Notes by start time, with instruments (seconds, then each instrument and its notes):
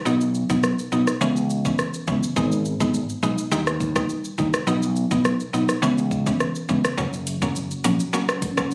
0.05 fretless electric bass B1, synth pluck F#3 B3 D#4, shaker
0.21 shaker
0.35 shaker
0.50 fretless electric bass B1, synth pluck F#3 B3 D#4, kick, shaker
0.63 cross-stick, shaker
0.79 shaker
0.92 fretless electric bass B1, synth pluck F#3 B3 D#4, shaker
1.07 cross-stick, shaker
1.21 fretless electric bass C#2, synth pluck E3 B3 C#4, shaker
1.36 shaker
1.50 shaker
1.65 synth pluck E3 B3 C#4, kick, shaker
1.79 cross-stick, shaker
1.94 shaker
2.07 fretless electric bass C#2, synth pluck E3 B3 C#4, kick, shaker
2.23 shaker
2.36 fretless electric bass G#1, synth pluck G#3 B3 D#4, kick, shaker
2.52 shaker
2.65 shaker
2.80 fretless electric bass G#1, synth pluck G#3 B3 D#4, kick, shaker
2.94 shaker
3.09 shaker
3.23 fretless electric bass B1, synth pluck G#3 B3 D#4, shaker
3.38 shaker
3.51 fretless electric bass D#2, synth pluck G3 A#3 D#4, shaker
3.67 cross-stick, shaker
3.80 kick, shaker
3.96 synth pluck G3 A#3 D#4, kick, cross-stick, shaker
4.09 shaker
4.24 shaker
4.38 fretless electric bass D#2, synth pluck G3 A#3 D#4, kick, shaker
4.54 cross-stick, shaker
4.67 fretless electric bass B1, synth pluck F#3 B3 D#4, shaker
4.82 shaker
4.96 shaker
5.11 fretless electric bass B1, synth pluck F#3 B3 D#4, kick, shaker
5.25 cross-stick, shaker
5.40 shaker
5.53 fretless electric bass B1, synth pluck F#3 B3 D#4, shaker
5.69 cross-stick, shaker
5.82 fretless electric bass C#2, synth pluck E3 B3 C#4, shaker
5.98 shaker
6.11 kick, shaker
6.26 synth pluck E3 B3 C#4, kick, shaker
6.40 cross-stick, shaker
6.55 shaker
6.69 fretless electric bass C#2, synth pluck E3 B3 C#4, kick, shaker
6.85 cross-stick, shaker
6.97 fretless electric bass F#1, synth pluck F#3 A#3 C#4, ambient pad C#4 A#4 F#5, kick, shaker
7.13 shaker
7.27 closed hi-hat, shaker
7.42 fretless electric bass F#1, synth pluck F#3 A#3 C#4, kick, shaker
7.56 shaker
7.71 shaker
7.84 fretless electric bass A#1, synth pluck F#3 A#3 C#4, closed hi-hat, shaker
8.00 shaker
8.13 synth pluck F#3 A#3 C#4, shaker
8.29 cross-stick, shaker
8.42 kick, closed hi-hat, shaker
8.57 synth pluck F#3 A#3 C#4, kick, cross-stick, shaker
8.71 shaker